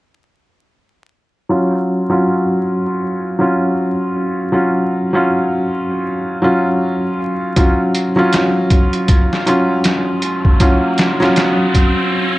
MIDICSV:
0, 0, Header, 1, 4, 480
1, 0, Start_track
1, 0, Key_signature, -6, "minor"
1, 0, Tempo, 759494
1, 941, Time_signature, 4, 2, 24, 8
1, 7828, End_track
2, 0, Start_track
2, 0, Title_t, "Felt piano"
2, 0, Program_c, 0, 0
2, 944, Note_on_c, 0, 54, 67
2, 950, Note_on_c, 0, 61, 57
2, 951, Note_on_c, 0, 65, 71
2, 1039, Control_c, 0, 64, 127
2, 1291, Note_off_c, 0, 54, 0
2, 1294, Note_off_c, 0, 61, 0
2, 1294, Note_off_c, 0, 65, 0
2, 1324, Note_on_c, 0, 54, 78
2, 1331, Note_on_c, 0, 61, 68
2, 1338, Note_on_c, 0, 65, 79
2, 2118, Note_off_c, 0, 54, 0
2, 2121, Note_off_c, 0, 61, 0
2, 2125, Note_off_c, 0, 65, 0
2, 2141, Note_on_c, 0, 54, 67
2, 2149, Note_on_c, 0, 61, 65
2, 2156, Note_on_c, 0, 65, 79
2, 2837, Note_off_c, 0, 54, 0
2, 2842, Note_off_c, 0, 61, 0
2, 2845, Note_off_c, 0, 65, 0
2, 2857, Note_on_c, 0, 54, 64
2, 2862, Note_on_c, 0, 61, 60
2, 2867, Note_on_c, 0, 65, 70
2, 3207, Note_off_c, 0, 54, 0
2, 3210, Note_off_c, 0, 61, 0
2, 3212, Note_off_c, 0, 65, 0
2, 3242, Note_on_c, 0, 54, 72
2, 3250, Note_on_c, 0, 61, 71
2, 3257, Note_on_c, 0, 65, 82
2, 4037, Note_off_c, 0, 54, 0
2, 4041, Note_off_c, 0, 61, 0
2, 4044, Note_off_c, 0, 65, 0
2, 4056, Note_on_c, 0, 54, 74
2, 4063, Note_on_c, 0, 61, 64
2, 4072, Note_on_c, 0, 65, 79
2, 4755, Note_off_c, 0, 54, 0
2, 4759, Note_off_c, 0, 61, 0
2, 4763, Note_off_c, 0, 65, 0
2, 4779, Note_on_c, 0, 54, 70
2, 4785, Note_on_c, 0, 61, 65
2, 4789, Note_on_c, 0, 65, 73
2, 5129, Note_off_c, 0, 54, 0
2, 5131, Note_off_c, 0, 61, 0
2, 5133, Note_off_c, 0, 65, 0
2, 5156, Note_on_c, 0, 54, 76
2, 5164, Note_on_c, 0, 61, 74
2, 5174, Note_on_c, 0, 65, 89
2, 5954, Note_off_c, 0, 54, 0
2, 5958, Note_off_c, 0, 61, 0
2, 5963, Note_off_c, 0, 65, 0
2, 5980, Note_on_c, 0, 54, 74
2, 5987, Note_on_c, 0, 61, 71
2, 5996, Note_on_c, 0, 65, 85
2, 6677, Note_off_c, 0, 54, 0
2, 6681, Note_off_c, 0, 61, 0
2, 6685, Note_off_c, 0, 65, 0
2, 6704, Note_on_c, 0, 54, 68
2, 6708, Note_on_c, 0, 61, 68
2, 6712, Note_on_c, 0, 65, 75
2, 7051, Note_off_c, 0, 54, 0
2, 7053, Note_off_c, 0, 61, 0
2, 7055, Note_off_c, 0, 65, 0
2, 7078, Note_on_c, 0, 54, 86
2, 7087, Note_on_c, 0, 61, 76
2, 7096, Note_on_c, 0, 65, 87
2, 7828, Note_off_c, 0, 54, 0
2, 7828, Note_off_c, 0, 61, 0
2, 7828, Note_off_c, 0, 65, 0
2, 7828, End_track
3, 0, Start_track
3, 0, Title_t, "Riser"
3, 0, Program_c, 1, 103
3, 4782, Note_on_c, 1, 60, 68
3, 7828, Note_off_c, 1, 60, 0
3, 7828, End_track
4, 0, Start_track
4, 0, Title_t, "Drums"
4, 4780, Note_on_c, 9, 42, 76
4, 4782, Note_on_c, 9, 36, 95
4, 4843, Note_off_c, 9, 42, 0
4, 4845, Note_off_c, 9, 36, 0
4, 5021, Note_on_c, 9, 42, 64
4, 5085, Note_off_c, 9, 42, 0
4, 5262, Note_on_c, 9, 42, 78
4, 5271, Note_on_c, 9, 38, 100
4, 5325, Note_off_c, 9, 42, 0
4, 5334, Note_off_c, 9, 38, 0
4, 5501, Note_on_c, 9, 36, 88
4, 5501, Note_on_c, 9, 42, 59
4, 5564, Note_off_c, 9, 42, 0
4, 5565, Note_off_c, 9, 36, 0
4, 5644, Note_on_c, 9, 42, 39
4, 5707, Note_off_c, 9, 42, 0
4, 5740, Note_on_c, 9, 42, 84
4, 5742, Note_on_c, 9, 36, 96
4, 5803, Note_off_c, 9, 42, 0
4, 5805, Note_off_c, 9, 36, 0
4, 5895, Note_on_c, 9, 38, 44
4, 5958, Note_off_c, 9, 38, 0
4, 5984, Note_on_c, 9, 42, 59
4, 6047, Note_off_c, 9, 42, 0
4, 6219, Note_on_c, 9, 42, 82
4, 6228, Note_on_c, 9, 38, 102
4, 6283, Note_off_c, 9, 42, 0
4, 6291, Note_off_c, 9, 38, 0
4, 6460, Note_on_c, 9, 42, 62
4, 6523, Note_off_c, 9, 42, 0
4, 6603, Note_on_c, 9, 36, 81
4, 6666, Note_off_c, 9, 36, 0
4, 6699, Note_on_c, 9, 42, 80
4, 6700, Note_on_c, 9, 36, 98
4, 6762, Note_off_c, 9, 42, 0
4, 6763, Note_off_c, 9, 36, 0
4, 6938, Note_on_c, 9, 42, 73
4, 6947, Note_on_c, 9, 38, 99
4, 7001, Note_off_c, 9, 42, 0
4, 7010, Note_off_c, 9, 38, 0
4, 7093, Note_on_c, 9, 38, 52
4, 7157, Note_off_c, 9, 38, 0
4, 7180, Note_on_c, 9, 42, 75
4, 7189, Note_on_c, 9, 38, 99
4, 7244, Note_off_c, 9, 42, 0
4, 7252, Note_off_c, 9, 38, 0
4, 7422, Note_on_c, 9, 36, 86
4, 7424, Note_on_c, 9, 42, 68
4, 7485, Note_off_c, 9, 36, 0
4, 7487, Note_off_c, 9, 42, 0
4, 7828, End_track
0, 0, End_of_file